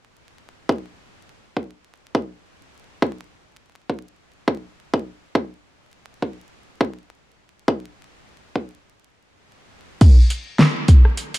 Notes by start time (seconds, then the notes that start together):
0.69 kick
1.57 kick
2.15 kick
3.02 kick
3.90 kick
4.48 kick
4.94 kick
5.35 kick
6.22 kick
6.81 kick
7.68 kick
8.56 kick
10.01 kick, closed hi-hat, crash
10.30 closed hi-hat
10.59 snare
10.88 kick, closed hi-hat
11.05 cross-stick
11.17 closed hi-hat
11.34 closed hi-hat